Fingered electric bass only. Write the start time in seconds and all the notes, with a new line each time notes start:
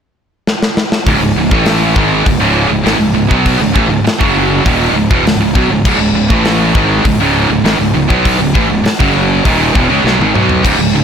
1.06 C#1
1.21 C#1
1.36 C#1
1.51 A1
1.96 G#1
2.27 C#1
2.40 C#1
2.70 C#1
2.86 G#1
3.00 C#1
3.14 C#1
3.31 B1
3.59 C#1
3.76 A1
3.89 C#1
4.04 muted fingered electric bass stroke
4.21 F#1
4.65 D#1
4.94 C#1
5.11 E1
5.23 C#1
5.37 C#1
5.55 B1
5.68 C#1
5.85 C#1
5.98 C#1
6.13 C#1
6.30 A1
6.75 G#1
7.05 C#1
7.21 C#1
7.50 C#1
7.64 G#1
7.79 C#1
7.94 C#1
8.10 B1
8.40 C#1
8.55 A1
8.70 C#1
8.85 muted fingered electric bass stroke
9.00 F#1
9.46 D#1
9.76 E1
9.90 C#2
10.04 B1
10.19 G#1
10.34 B1
10.64 C#1
10.79 C#1
10.92 C#1